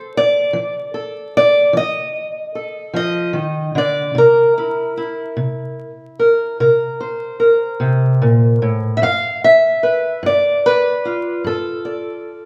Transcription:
Already playing: A4 C5
0.17 D5
0.53 F3
0.94 A4
1.37 D5
1.73 F3 D#5
2.55 A4
2.93 F3 D#5
3.33 D#3
3.75 D3 D5
4.15 C3 A#4
4.58 E4
4.97 E4
5.37 C3
6.19 A#4
6.60 C3 A#4
7.00 C5
7.40 A#4
7.80 C3
8.22 A#2
8.62 A2
8.97 E5
9.02 G2 F5
9.44 E5
9.83 B4
10.23 G2 D5
10.66 B4
11.05 F4
11.44 G2 A4
11.85 D5

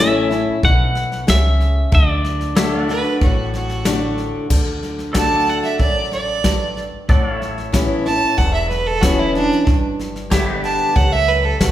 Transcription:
Already playing: A1 A2 E3 A4 C#5 E5
0.00 A3 C#4 E4 E5
0.30 C#4 E4, snare
0.63 B1 B2 F#5, kick, snare
0.95 snare
1.12 snare
1.27 C#2 C#3 E5, snare, hi-hat pedal
1.60 snare
1.92 D2 D3 D5, kick, snare
2.24 snare
2.41 snare
2.55 D3 A3 D4 F#4 A4 C#5 E5, snare, hi-hat pedal
2.77 D5
2.84 F#5
2.88 D4 F#4 B4, snare
3.21 A1 A2 F#4, kick, snare
3.54 F#4, snare
3.69 snare
3.85 D3 A3 D4 F#4, snare, hi-hat pedal
4.18 snare
4.50 D2 D3, kick, snare, crash
4.83 snare
4.98 snare
5.13 D3 A3 D4 A4 D5 F#5 A5, kick, snare, hi-hat pedal
5.17 F#4
5.47 F#5, snare
5.63 E5, snare
5.79 A1 F#2 D5, kick, snare
6.12 D5, snare
6.44 G2, kick, snare, hi-hat pedal
6.77 snare
7.09 A1 A2 A4 D5 F#5, kick, snare
7.30 C#5
7.36 E5
7.42 snare
7.58 snare
7.72 E3 B3 C#4 E4, kick, snare, hi-hat pedal
8.05 C#4 E4 A5, snare
8.38 E1 E2 F#5, kick, snare
8.54 E5
8.69 B4, snare
8.87 A4
9.01 E3 B3 C#4 E4 F#4, kick, snare, hi-hat pedal
9.19 E4
9.34 D4, snare
9.51 snare
9.67 G1 G2, kick, snare
9.99 snare
10.16 snare
10.30 D3 G3 B3 G4 C#5 E5, kick, snare, hi-hat pedal
10.58 B4 D5
10.64 A5, snare
10.96 C#2 F#2 F#5, kick, snare
11.13 E5
11.28 B4, snare
11.45 A4
11.60 B1 G2 F#4, kick, snare, hi-hat pedal

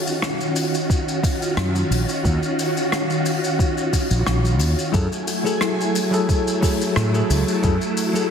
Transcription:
Already playing: D#3 C#4 F4 F#4
0.07 shaker
0.22 cross-stick, shaker
0.41 shaker
0.56 open hi-hat, shaker
0.74 shaker
0.90 kick, shaker
1.08 shaker
1.23 kick, open hi-hat, shaker
1.42 shaker
1.57 F#2, cross-stick, shaker
1.75 shaker
1.90 A#1, open hi-hat, shaker
2.09 shaker
2.24 D#2, kick, shaker
2.43 shaker
2.59 open hi-hat, shaker
2.77 shaker
2.92 cross-stick, shaker
3.10 shaker
3.26 open hi-hat, shaker
3.44 shaker
3.59 kick, shaker
3.77 shaker
3.93 kick, open hi-hat, shaker
4.11 A#1, shaker
4.27 A#1, cross-stick, shaker
4.45 shaker
4.59 D#2, open hi-hat, shaker
4.79 shaker
4.92 F#2 F#3 A3 E4 G#4 A4 G#5, kick, shaker
5.12 shaker
5.27 open hi-hat, shaker
5.44 F#3 E4 G#4 A4, shaker
5.61 cross-stick, shaker
5.81 shaker
5.95 open hi-hat, shaker
6.11 F#3 E4 G#4 A4, shaker
6.29 kick, shaker
6.47 shaker
6.60 F#3 E4 G#4 A4, kick, open hi-hat, shaker
6.81 shaker
6.96 A2, cross-stick, shaker
7.12 F#3 E4 G#4 A4, shaker
7.30 C#2, open hi-hat, shaker
7.48 shaker
7.62 F#2 F#3 E4 G#4 A4, kick, shaker
7.81 shaker
7.97 open hi-hat, shaker
8.13 F#3 E4 G#4 A4, shaker

